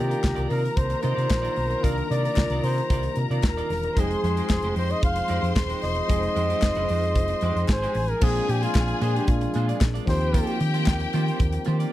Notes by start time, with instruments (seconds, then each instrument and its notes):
Already playing: fingered electric bass C3, french horn section C3 D#3 G3 A#3 D4 F4, tine electric piano D#3 A#3 D4 F4, flugelhorn G4, string section A#4 A#5
0.09 clean electric guitar D#4 F4 A#4 D5, closed hi-hat
0.23 fingered electric bass C2, muted clean electric guitar stroke, kick, snare, clap
0.35 fingered electric bass C2, clean electric guitar D#4 F4 A#4 D5, closed hi-hat
0.50 fingered electric bass C3, clean electric guitar D#4 F4 A#4 D5, flugelhorn A#4, open hi-hat
0.63 muted clean electric guitar stroke, closed hi-hat
0.76 fingered electric bass C2, flugelhorn C5, muted clean electric guitar stroke, kick, closed hi-hat
0.90 muted clean electric guitar stroke, closed hi-hat
1.03 fingered electric bass C3, clean electric guitar D#4 F4 A#4 D#5, flugelhorn C5, closed hi-hat
1.15 fingered electric bass C3, clean electric guitar D#4 F4 A#4 D5, closed hi-hat
1.30 fingered electric bass A#1, muted clean electric guitar stroke, kick, snare, clap
1.42 clean electric guitar D#4 F4 A#4 D5, closed hi-hat
1.56 fingered electric bass B1, muted clean electric guitar stroke, open hi-hat
1.70 muted clean electric guitar stroke, closed hi-hat
1.80 fingered electric bass C2, tine electric piano D#3 A#3 D4 F4, clean electric guitar D#4 F4, flugelhorn A#4, kick
1.84 clean electric guitar A#4 D5, closed hi-hat
1.98 muted clean electric guitar stroke, closed hi-hat
2.10 fingered electric bass C3, clean electric guitar D#4 F4 A#4 D5, flugelhorn D5, closed hi-hat
2.25 clean electric guitar D#4 F4 A#4 D5, closed hi-hat
2.37 fingered electric bass C2, muted clean electric guitar stroke, kick, snare, clap
2.50 fingered electric bass C2, clean electric guitar F4 A#4 D5, closed hi-hat
2.54 clean electric guitar D#4
2.63 fingered electric bass C3, clean electric guitar D#4 F4 A#4 D5, flugelhorn C5, open hi-hat
2.78 muted clean electric guitar stroke, closed hi-hat
2.90 fingered electric bass C2, clean electric guitar D#4 F4 A#4 D5, kick, closed hi-hat
3.03 muted clean electric guitar stroke, closed hi-hat
3.15 fingered electric bass C3, muted clean electric guitar stroke, closed hi-hat
3.30 fingered electric bass C3, clean electric guitar D#4 F4 A#4 D5, closed hi-hat
3.43 fingered electric bass D#1, muted clean electric guitar stroke, kick, snare, clap
3.48 flugelhorn A#4
3.57 clean electric guitar D#4 F4 A#4 D5, closed hi-hat
3.70 fingered electric bass E1, muted clean electric guitar stroke, snare, open hi-hat
3.83 muted clean electric guitar stroke, closed hi-hat
3.96 fingered electric bass F1, tine electric piano F3 G3 D#4 G#4, french horn section F3 C4 D#4 F4 G#4, clean electric guitar G#3 D#4 G4, flugelhorn G#4, string section C5 C6, kick, closed hi-hat
4.00 tine electric piano G#3, clean electric guitar C5
4.11 muted clean electric guitar stroke, closed hi-hat
4.24 fingered electric bass F2, clean electric guitar G#3 D#4 G4 C5, closed hi-hat
4.37 clean electric guitar G#3 D#4 G4 C5, closed hi-hat
4.50 fingered electric bass F1, muted clean electric guitar stroke, kick, snare, clap
4.62 fingered electric bass F1, clean electric guitar G#3 D#4 G4 C5, closed hi-hat
4.76 fingered electric bass F2, clean electric guitar G#3 D#4 G4 C5, flugelhorn C5, open hi-hat
4.90 flugelhorn D#5, muted clean electric guitar stroke, closed hi-hat
5.02 fingered electric bass F1, flugelhorn F5, muted clean electric guitar stroke, kick, closed hi-hat
5.16 muted clean electric guitar stroke, closed hi-hat
5.28 fingered electric bass F2, clean electric guitar G#3 D#4 G4 D5, closed hi-hat
5.41 fingered electric bass F2, clean electric guitar G#3 D#4 G4 C5, closed hi-hat
5.56 fingered electric bass D#1, kick, snare, clap
5.68 clean electric guitar G#3 D#4 G4 C5, closed hi-hat
5.82 fingered electric bass E1, flugelhorn D#5, muted clean electric guitar stroke, snare, open hi-hat
5.95 muted clean electric guitar stroke, closed hi-hat
6.07 fingered electric bass F1, tine electric piano F3 G#3 D#4 G#4, clean electric guitar G#3 D#4 G4 C5, kick, closed hi-hat
6.23 muted clean electric guitar stroke, closed hi-hat
6.35 fingered electric bass F2, clean electric guitar G#3 D#4 G4 C5, closed hi-hat
6.49 clean electric guitar G#3 D#4 G4 C5, closed hi-hat
6.62 fingered electric bass F1, kick, snare, clap
6.75 fingered electric bass F1, clean electric guitar G#3 D#4 G4 C5, closed hi-hat
6.89 fingered electric bass F2, clean electric guitar G#3 D#4 G4 C5, open hi-hat
7.04 muted clean electric guitar stroke, closed hi-hat
7.15 fingered electric bass F1, muted clean electric guitar stroke, kick, closed hi-hat
7.28 muted clean electric guitar stroke, closed hi-hat
7.41 fingered electric bass F2, clean electric guitar G#3 D#4 G4 D5, closed hi-hat
7.56 fingered electric bass F2, clean electric guitar G#3 D#4 G4 C5, closed hi-hat
7.68 fingered electric bass G#1, string section G#4 G#5, flugelhorn C5, muted clean electric guitar stroke, kick, snare, clap
7.83 clean electric guitar G#3 D#4 G4 C5, closed hi-hat
7.95 fingered electric bass A1, muted clean electric guitar stroke, open hi-hat
8.08 flugelhorn A#4, muted clean electric guitar stroke, closed hi-hat
8.21 fingered electric bass A#1, tine electric piano F3 A#3 C4 D4 G#4, clean electric guitar G#3 D4 F4 C5, french horn section G#3 A#3 D4, flugelhorn G#4, string section G#4 G#5, kick, crash
8.35 closed hi-hat
8.49 fingered electric bass A#2, flugelhorn G4, muted clean electric guitar stroke, closed hi-hat
8.62 clean electric guitar G#3 D4 F4 C5, flugelhorn F4, closed hi-hat
8.75 fingered electric bass A#1, muted clean electric guitar stroke, kick, snare, clap
8.88 muted clean electric guitar stroke, closed hi-hat
9.01 fingered electric bass A#2, clean electric guitar G#3 D4 F4 C5, flugelhorn G#4, closed hi-hat
9.15 clean electric guitar G#3 D4 F4 C5, flugelhorn G4, closed hi-hat
9.27 fingered electric bass A#1, flugelhorn F4, kick, closed hi-hat
9.41 muted clean electric guitar stroke, closed hi-hat
9.54 fingered electric bass A#2, clean electric guitar G#3 D4 F4 C5, closed hi-hat
9.68 clean electric guitar G#3 D4 F4 D5, closed hi-hat
9.81 fingered electric bass A#1, muted clean electric guitar stroke, kick, snare, clap
9.94 clean electric guitar G#3 D4 F4 D5, closed hi-hat
10.06 fingered electric bass D#2, french horn section D#3 C4 F4 A#4, tine electric piano F3 A#3 C4 D#4 G4, string section G4 G5, flugelhorn C5, muted clean electric guitar stroke, kick, snare, open hi-hat
10.20 muted clean electric guitar stroke, closed hi-hat
10.33 clean electric guitar A#3 F4 G4 C5, kick, closed hi-hat
10.47 closed hi-hat
10.60 fingered electric bass D#3, muted clean electric guitar stroke, closed hi-hat
10.74 clean electric guitar A#3 F4 G4 C5, closed hi-hat
10.86 fingered electric bass D#2, kick, snare, clap
11.00 muted clean electric guitar stroke, closed hi-hat
11.13 fingered electric bass D#3, clean electric guitar A#3 F4 G4 C5, closed hi-hat
11.26 clean electric guitar A#3 F4 G4 C5, closed hi-hat
11.39 fingered electric bass D#2, muted clean electric guitar stroke, kick, closed hi-hat
11.52 muted clean electric guitar stroke, closed hi-hat
11.65 fingered electric bass D#3, clean electric guitar A#3 F4 G4 C5, closed hi-hat
11.79 clean electric guitar A#3 F4 G4 D5, closed hi-hat